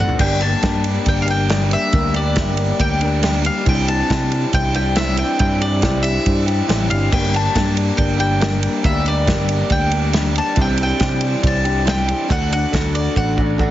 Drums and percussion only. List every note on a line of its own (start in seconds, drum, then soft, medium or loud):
0.09 floor tom medium
0.19 kick loud
0.19 crash loud
0.41 ride medium
0.63 kick medium
0.63 snare loud
0.63 ride loud
0.84 ride medium
1.06 kick loud
1.06 ride loud
1.28 ride medium
1.49 snare loud
1.49 ride loud
1.71 ride medium
1.93 kick loud
1.93 ride loud
2.14 ride medium
2.36 kick medium
2.36 snare loud
2.36 ride loud
2.57 ride medium
2.79 kick loud
2.79 ride loud
3.01 ride medium
3.23 snare loud
3.23 ride loud
3.45 ride medium
3.66 kick loud
3.66 ride loud
3.88 ride medium
4.10 kick medium
4.10 snare loud
4.10 ride loud
4.32 ride medium
4.53 kick loud
4.53 ride loud
4.74 ride medium
4.96 snare loud
4.96 ride loud
5.17 ride medium
5.39 kick loud
5.39 ride loud
5.62 ride medium
5.82 kick medium
5.82 snare loud
5.82 ride loud
6.04 ride medium
6.26 kick medium
6.26 ride loud
6.48 ride medium
6.69 snare loud
6.69 ride loud
6.91 ride medium
7.12 kick loud
7.12 crash loud
7.34 ride medium
7.55 kick medium
7.55 snare loud
7.55 ride loud
7.77 ride medium
7.98 kick medium
7.98 ride loud
8.20 ride medium
8.41 snare loud
8.41 ride loud
8.63 ride medium
8.84 kick loud
8.84 ride loud
9.06 ride medium
9.27 kick medium
9.27 snare loud
9.27 ride loud
9.49 ride medium
9.70 kick loud
9.70 ride loud
9.91 ride medium
10.13 snare loud
10.13 ride loud
10.36 ride medium
10.56 kick loud
10.56 ride loud
10.78 ride medium
11.00 kick medium
11.00 snare loud
11.00 ride loud
11.21 ride medium
11.43 kick loud
11.43 ride loud
11.65 ride medium
11.87 snare loud
11.87 ride loud
12.08 ride medium
12.30 kick loud
12.30 ride loud
12.53 ride medium
12.73 kick medium
12.73 snare loud
12.73 ride medium
12.95 ride medium
13.16 kick loud
13.38 kick medium
13.59 kick medium